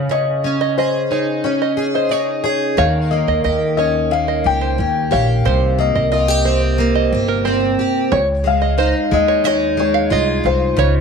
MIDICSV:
0, 0, Header, 1, 5, 480
1, 0, Start_track
1, 0, Tempo, 667408
1, 77, Time_signature, 4, 2, 24, 8
1, 7916, End_track
2, 0, Start_track
2, 0, Title_t, "Upright piano"
2, 0, Program_c, 0, 0
2, 0, Note_on_c, 0, 73, 66
2, 84, Note_on_c, 0, 75, 91
2, 87, Note_off_c, 0, 73, 0
2, 558, Note_on_c, 0, 72, 85
2, 576, Note_off_c, 0, 75, 0
2, 1040, Note_on_c, 0, 73, 82
2, 1053, Note_off_c, 0, 72, 0
2, 1398, Note_on_c, 0, 75, 81
2, 1411, Note_off_c, 0, 73, 0
2, 1506, Note_off_c, 0, 75, 0
2, 1517, Note_on_c, 0, 75, 84
2, 1758, Note_on_c, 0, 73, 81
2, 1766, Note_off_c, 0, 75, 0
2, 2002, Note_on_c, 0, 77, 98
2, 2006, Note_off_c, 0, 73, 0
2, 2234, Note_on_c, 0, 75, 87
2, 2248, Note_off_c, 0, 77, 0
2, 2701, Note_off_c, 0, 75, 0
2, 2712, Note_on_c, 0, 75, 93
2, 2962, Note_on_c, 0, 77, 93
2, 2964, Note_off_c, 0, 75, 0
2, 3209, Note_off_c, 0, 77, 0
2, 3209, Note_on_c, 0, 79, 111
2, 3683, Note_on_c, 0, 77, 91
2, 3699, Note_off_c, 0, 79, 0
2, 4169, Note_on_c, 0, 75, 85
2, 4176, Note_off_c, 0, 77, 0
2, 4394, Note_off_c, 0, 75, 0
2, 4404, Note_on_c, 0, 75, 87
2, 5093, Note_off_c, 0, 75, 0
2, 5845, Note_on_c, 0, 73, 96
2, 6089, Note_off_c, 0, 73, 0
2, 6094, Note_on_c, 0, 77, 104
2, 6573, Note_on_c, 0, 75, 90
2, 6579, Note_off_c, 0, 77, 0
2, 6788, Note_off_c, 0, 75, 0
2, 6810, Note_on_c, 0, 73, 92
2, 7039, Note_off_c, 0, 73, 0
2, 7050, Note_on_c, 0, 73, 103
2, 7492, Note_off_c, 0, 73, 0
2, 7526, Note_on_c, 0, 72, 88
2, 7916, Note_off_c, 0, 72, 0
2, 7916, End_track
3, 0, Start_track
3, 0, Title_t, "Five-string banjo"
3, 0, Program_c, 1, 105
3, 79, Note_on_c, 1, 73, 86
3, 307, Note_off_c, 1, 73, 0
3, 438, Note_on_c, 1, 75, 71
3, 552, Note_off_c, 1, 75, 0
3, 564, Note_on_c, 1, 75, 65
3, 790, Note_off_c, 1, 75, 0
3, 802, Note_on_c, 1, 73, 70
3, 915, Note_off_c, 1, 73, 0
3, 1163, Note_on_c, 1, 75, 70
3, 1275, Note_off_c, 1, 75, 0
3, 1403, Note_on_c, 1, 72, 69
3, 1521, Note_off_c, 1, 72, 0
3, 1521, Note_on_c, 1, 73, 76
3, 1859, Note_off_c, 1, 73, 0
3, 2000, Note_on_c, 1, 73, 99
3, 2229, Note_off_c, 1, 73, 0
3, 2360, Note_on_c, 1, 75, 68
3, 2469, Note_off_c, 1, 75, 0
3, 2478, Note_on_c, 1, 75, 76
3, 2707, Note_off_c, 1, 75, 0
3, 2723, Note_on_c, 1, 73, 72
3, 2836, Note_off_c, 1, 73, 0
3, 3079, Note_on_c, 1, 75, 69
3, 3194, Note_off_c, 1, 75, 0
3, 3318, Note_on_c, 1, 72, 65
3, 3433, Note_off_c, 1, 72, 0
3, 3681, Note_on_c, 1, 73, 75
3, 3795, Note_off_c, 1, 73, 0
3, 3923, Note_on_c, 1, 72, 95
3, 4150, Note_off_c, 1, 72, 0
3, 4282, Note_on_c, 1, 75, 68
3, 4391, Note_off_c, 1, 75, 0
3, 4399, Note_on_c, 1, 75, 68
3, 4628, Note_off_c, 1, 75, 0
3, 4640, Note_on_c, 1, 72, 67
3, 4754, Note_off_c, 1, 72, 0
3, 5001, Note_on_c, 1, 75, 72
3, 5114, Note_off_c, 1, 75, 0
3, 5237, Note_on_c, 1, 70, 72
3, 5353, Note_off_c, 1, 70, 0
3, 5357, Note_on_c, 1, 72, 75
3, 5696, Note_off_c, 1, 72, 0
3, 5838, Note_on_c, 1, 73, 102
3, 5952, Note_off_c, 1, 73, 0
3, 6197, Note_on_c, 1, 75, 65
3, 6311, Note_off_c, 1, 75, 0
3, 6317, Note_on_c, 1, 72, 81
3, 6431, Note_off_c, 1, 72, 0
3, 6676, Note_on_c, 1, 73, 79
3, 6797, Note_off_c, 1, 73, 0
3, 6797, Note_on_c, 1, 75, 82
3, 6910, Note_off_c, 1, 75, 0
3, 7151, Note_on_c, 1, 77, 72
3, 7267, Note_off_c, 1, 77, 0
3, 7278, Note_on_c, 1, 75, 87
3, 7390, Note_off_c, 1, 75, 0
3, 7520, Note_on_c, 1, 77, 74
3, 7631, Note_off_c, 1, 77, 0
3, 7757, Note_on_c, 1, 73, 100
3, 7869, Note_off_c, 1, 73, 0
3, 7916, End_track
4, 0, Start_track
4, 0, Title_t, "Steel-string acoustic guitar"
4, 0, Program_c, 2, 25
4, 68, Note_on_c, 2, 49, 73
4, 318, Note_on_c, 2, 61, 55
4, 560, Note_on_c, 2, 68, 60
4, 796, Note_on_c, 2, 63, 53
4, 1033, Note_off_c, 2, 61, 0
4, 1035, Note_on_c, 2, 61, 63
4, 1264, Note_off_c, 2, 68, 0
4, 1272, Note_on_c, 2, 68, 58
4, 1502, Note_off_c, 2, 63, 0
4, 1505, Note_on_c, 2, 63, 54
4, 1744, Note_off_c, 2, 68, 0
4, 1753, Note_on_c, 2, 68, 63
4, 1993, Note_on_c, 2, 51, 76
4, 1996, Note_off_c, 2, 49, 0
4, 2045, Note_off_c, 2, 68, 0
4, 2233, Note_off_c, 2, 61, 0
4, 2236, Note_on_c, 2, 58, 57
4, 2475, Note_on_c, 2, 67, 61
4, 2711, Note_off_c, 2, 63, 0
4, 2714, Note_on_c, 2, 61, 57
4, 2954, Note_off_c, 2, 58, 0
4, 2957, Note_on_c, 2, 58, 65
4, 3192, Note_off_c, 2, 67, 0
4, 3195, Note_on_c, 2, 67, 60
4, 3430, Note_off_c, 2, 61, 0
4, 3439, Note_on_c, 2, 61, 54
4, 3671, Note_off_c, 2, 67, 0
4, 3674, Note_on_c, 2, 67, 67
4, 3922, Note_on_c, 2, 48, 79
4, 3968, Note_off_c, 2, 61, 0
4, 4158, Note_off_c, 2, 58, 0
4, 4161, Note_on_c, 2, 58, 60
4, 4396, Note_off_c, 2, 67, 0
4, 4398, Note_on_c, 2, 65, 62
4, 4420, Note_off_c, 2, 51, 0
4, 4519, Note_off_c, 2, 65, 0
4, 4519, Note_on_c, 2, 67, 53
4, 4641, Note_on_c, 2, 60, 56
4, 4869, Note_off_c, 2, 58, 0
4, 4878, Note_on_c, 2, 58, 68
4, 5116, Note_off_c, 2, 67, 0
4, 5125, Note_on_c, 2, 67, 64
4, 5351, Note_off_c, 2, 60, 0
4, 5360, Note_on_c, 2, 60, 57
4, 5594, Note_off_c, 2, 67, 0
4, 5603, Note_on_c, 2, 67, 62
4, 5839, Note_off_c, 2, 48, 0
4, 5886, Note_off_c, 2, 58, 0
4, 5887, Note_off_c, 2, 60, 0
4, 5889, Note_off_c, 2, 67, 0
4, 6070, Note_on_c, 2, 56, 60
4, 6313, Note_on_c, 2, 63, 60
4, 6547, Note_off_c, 2, 56, 0
4, 6555, Note_on_c, 2, 56, 55
4, 6782, Note_off_c, 2, 63, 0
4, 6790, Note_on_c, 2, 63, 70
4, 7020, Note_off_c, 2, 56, 0
4, 7028, Note_on_c, 2, 56, 61
4, 7266, Note_on_c, 2, 65, 64
4, 7498, Note_off_c, 2, 63, 0
4, 7507, Note_on_c, 2, 63, 57
4, 7743, Note_on_c, 2, 49, 84
4, 7916, Note_off_c, 2, 49, 0
4, 7916, Note_off_c, 2, 56, 0
4, 7916, Note_off_c, 2, 63, 0
4, 7916, Note_off_c, 2, 65, 0
4, 7916, End_track
5, 0, Start_track
5, 0, Title_t, "Upright bass"
5, 0, Program_c, 3, 32
5, 1998, Note_on_c, 3, 39, 96
5, 2331, Note_off_c, 3, 39, 0
5, 2356, Note_on_c, 3, 39, 89
5, 2469, Note_off_c, 3, 39, 0
5, 2482, Note_on_c, 3, 39, 86
5, 3173, Note_off_c, 3, 39, 0
5, 3204, Note_on_c, 3, 37, 86
5, 3424, Note_off_c, 3, 37, 0
5, 3445, Note_on_c, 3, 39, 85
5, 3664, Note_off_c, 3, 39, 0
5, 3689, Note_on_c, 3, 34, 86
5, 3906, Note_off_c, 3, 34, 0
5, 3926, Note_on_c, 3, 36, 93
5, 4255, Note_off_c, 3, 36, 0
5, 4284, Note_on_c, 3, 36, 89
5, 5093, Note_off_c, 3, 36, 0
5, 5124, Note_on_c, 3, 31, 87
5, 5572, Note_off_c, 3, 31, 0
5, 5840, Note_on_c, 3, 37, 98
5, 6409, Note_off_c, 3, 37, 0
5, 6557, Note_on_c, 3, 39, 90
5, 7246, Note_off_c, 3, 39, 0
5, 7274, Note_on_c, 3, 36, 89
5, 7494, Note_off_c, 3, 36, 0
5, 7514, Note_on_c, 3, 36, 84
5, 7734, Note_off_c, 3, 36, 0
5, 7752, Note_on_c, 3, 37, 89
5, 7916, Note_off_c, 3, 37, 0
5, 7916, End_track
0, 0, End_of_file